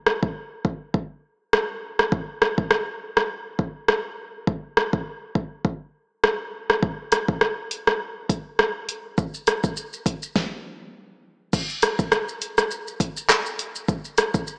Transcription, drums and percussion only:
0.06 cross-stick
0.23 kick
0.65 kick
0.94 kick
1.53 cross-stick
1.99 cross-stick
2.12 kick
2.42 cross-stick
2.58 kick
2.71 cross-stick
3.17 cross-stick
3.59 kick
3.88 cross-stick
4.47 kick
4.77 cross-stick
4.93 kick
5.35 kick
5.65 kick
6.24 cross-stick
6.70 cross-stick
6.83 kick
7.12 cross-stick, closed hi-hat
7.28 kick
7.41 cross-stick
7.71 closed hi-hat
7.87 cross-stick
8.29 kick, closed hi-hat
8.59 cross-stick
8.89 closed hi-hat
9.18 kick, shaker
9.34 shaker
9.47 cross-stick, closed hi-hat, shaker
9.64 kick, shaker
9.77 shaker
9.93 shaker
10.06 kick, closed hi-hat, shaker
10.23 shaker
10.36 kick, snare
11.53 kick, crash, shaker
11.69 shaker
11.82 cross-stick, closed hi-hat, shaker
11.99 kick, shaker
12.12 cross-stick, shaker
12.29 shaker
12.42 closed hi-hat, shaker
12.58 cross-stick, shaker
12.71 shaker
12.87 shaker
13.00 kick, closed hi-hat, shaker
13.17 shaker
13.30 cross-stick, clap, shaker
13.46 shaker
13.59 closed hi-hat, shaker
13.75 shaker
13.88 kick, shaker
14.05 shaker
14.18 cross-stick, closed hi-hat, shaker
14.34 kick, shaker
14.47 shaker

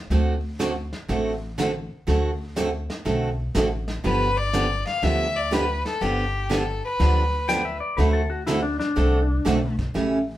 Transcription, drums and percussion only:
0.11 brush sweep, snare
0.60 snare, hi-hat pedal
0.93 snare
1.09 brush sweep, snare
1.58 snare, hi-hat pedal
2.07 brush sweep, snare
2.57 snare, hi-hat pedal
2.90 snare
3.06 brush sweep, snare
3.55 snare, hi-hat pedal
3.88 snare
4.04 brush sweep, snare
4.53 snare, hi-hat pedal
4.87 snare
5.03 brush sweep, snare
5.52 snare, hi-hat pedal
5.85 snare
6.02 brush sweep, snare
6.51 snare, hi-hat pedal
7.00 brush sweep, snare
7.49 snare, hi-hat pedal
7.98 brush sweep, snare
8.47 snare, hi-hat pedal
8.80 snare
8.97 brush sweep, snare
9.46 snare, hi-hat pedal
9.79 kick, snare
9.95 brush sweep, snare

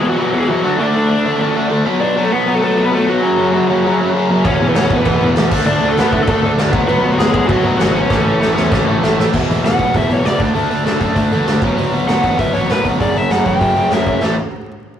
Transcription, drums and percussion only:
4.45 kick, crash
4.75 snare, crash
4.90 kick
5.05 kick, crash
5.36 snare, crash
5.51 kick, crash
5.66 crash
5.97 snare, crash
6.13 kick
6.27 kick, crash
6.58 snare, crash
6.73 kick
6.89 crash
7.19 snare, crash
7.34 kick
7.49 kick, crash
7.80 snare, crash
8.10 kick, snare
8.42 snare
8.57 snare
8.72 kick, snare
9.04 snare
9.20 snare
9.34 kick, crash
9.50 open hi-hat
9.65 snare, open hi-hat
9.79 kick, open hi-hat
9.94 kick, open hi-hat
10.10 open hi-hat
10.25 snare, open hi-hat
10.40 kick, open hi-hat
10.55 open hi-hat
10.71 open hi-hat
10.86 snare, open hi-hat
11.01 kick, open hi-hat
11.16 kick, open hi-hat
11.31 open hi-hat
11.47 snare, open hi-hat
11.61 kick, open hi-hat
11.78 open hi-hat
11.93 open hi-hat
12.08 snare, open hi-hat
12.24 kick, open hi-hat
12.39 kick, open hi-hat
12.54 open hi-hat
12.69 snare, open hi-hat
12.85 kick, open hi-hat
13.00 kick, open hi-hat
13.15 open hi-hat
13.30 snare, open hi-hat
13.45 kick, open hi-hat
13.61 kick, open hi-hat
13.76 open hi-hat
13.91 snare, open hi-hat
14.06 kick, open hi-hat
14.23 snare

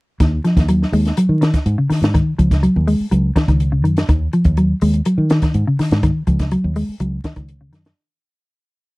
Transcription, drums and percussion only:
0.20 kick, snare, closed hi-hat
0.45 snare, closed hi-hat
0.57 kick, snare, closed hi-hat
0.68 closed hi-hat
0.82 snare
0.93 open hi-hat
1.05 snare, closed hi-hat
1.17 closed hi-hat
1.42 snare, closed hi-hat
1.54 kick, snare, closed hi-hat
1.66 closed hi-hat
1.90 snare, open hi-hat
2.03 snare, closed hi-hat
2.14 kick, closed hi-hat
2.39 kick, closed hi-hat
2.51 kick, snare, closed hi-hat
2.63 closed hi-hat
2.88 open hi-hat
3.12 closed hi-hat
3.36 kick, snare, closed hi-hat
3.48 kick, closed hi-hat
3.60 closed hi-hat
3.85 closed hi-hat
3.97 snare, closed hi-hat
4.09 kick, closed hi-hat
4.33 closed hi-hat
4.44 kick, closed hi-hat
4.57 closed hi-hat
4.81 open hi-hat
4.93 closed hi-hat
5.05 closed hi-hat
5.30 snare, closed hi-hat
5.42 kick, snare, closed hi-hat
5.54 closed hi-hat
5.79 snare, open hi-hat
5.91 snare, closed hi-hat
6.03 kick, closed hi-hat
6.27 kick, closed hi-hat
6.39 kick, snare, closed hi-hat
6.51 closed hi-hat
6.76 open hi-hat
7.00 closed hi-hat
7.24 kick, snare, closed hi-hat
7.36 kick, closed hi-hat
7.49 closed hi-hat
7.73 snare, closed hi-hat
7.85 snare, closed hi-hat

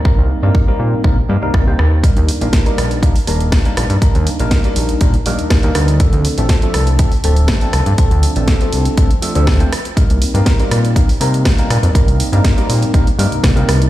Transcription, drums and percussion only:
0.05 kick
0.55 kick
1.04 kick
1.54 kick, cross-stick
1.79 cross-stick
2.04 kick, closed hi-hat
2.17 closed hi-hat
2.29 open hi-hat
2.41 closed hi-hat
2.53 kick, snare, closed hi-hat
2.66 closed hi-hat
2.78 cross-stick, open hi-hat
2.91 closed hi-hat
3.03 kick, closed hi-hat
3.16 open hi-hat
3.27 open hi-hat
3.41 closed hi-hat
3.52 kick, cross-stick, snare, closed hi-hat
3.65 closed hi-hat
3.77 cross-stick, open hi-hat
3.90 closed hi-hat
4.02 kick, closed hi-hat
4.15 closed hi-hat
4.27 open hi-hat
4.39 closed hi-hat
4.51 kick, snare, closed hi-hat
4.64 closed hi-hat
4.76 open hi-hat
4.89 closed hi-hat
5.01 kick, closed hi-hat
5.14 closed hi-hat
5.26 open hi-hat
5.39 closed hi-hat
5.50 kick, cross-stick, snare, closed hi-hat
5.63 closed hi-hat
5.75 cross-stick, open hi-hat
5.88 closed hi-hat
6.00 kick, closed hi-hat
6.13 closed hi-hat
6.25 open hi-hat
6.38 closed hi-hat
6.49 kick, snare, closed hi-hat
6.62 closed hi-hat
6.74 cross-stick, open hi-hat
6.87 closed hi-hat
6.99 kick, closed hi-hat
7.12 open hi-hat
7.24 open hi-hat
7.36 closed hi-hat
7.48 kick, cross-stick, snare, closed hi-hat
7.61 closed hi-hat
7.73 cross-stick, open hi-hat
7.86 closed hi-hat
7.98 kick, closed hi-hat
8.11 closed hi-hat
8.23 open hi-hat
8.36 closed hi-hat
8.48 kick, snare, closed hi-hat
8.61 closed hi-hat
8.73 open hi-hat
8.85 closed hi-hat
8.97 kick, closed hi-hat
9.11 closed hi-hat
9.22 open hi-hat
9.35 closed hi-hat
9.47 kick, cross-stick, snare, open hi-hat
9.60 closed hi-hat
9.73 cross-stick, open hi-hat
9.85 closed hi-hat
9.97 kick, closed hi-hat
10.10 closed hi-hat
10.22 open hi-hat
10.35 closed hi-hat
10.46 kick, snare, closed hi-hat
10.60 closed hi-hat
10.71 cross-stick, open hi-hat
10.85 closed hi-hat
10.96 kick, closed hi-hat
11.09 open hi-hat
11.21 open hi-hat
11.34 closed hi-hat
11.45 kick, cross-stick, snare, closed hi-hat
11.59 closed hi-hat
11.71 cross-stick, open hi-hat
11.83 closed hi-hat
11.95 kick, closed hi-hat
12.08 closed hi-hat
12.20 open hi-hat
12.33 closed hi-hat
12.44 kick, snare, closed hi-hat
12.58 closed hi-hat
12.70 open hi-hat
12.83 closed hi-hat
12.94 kick, closed hi-hat
13.07 closed hi-hat
13.19 open hi-hat
13.32 closed hi-hat
13.44 kick, cross-stick, snare, closed hi-hat
13.57 closed hi-hat
13.69 cross-stick, open hi-hat
13.82 closed hi-hat

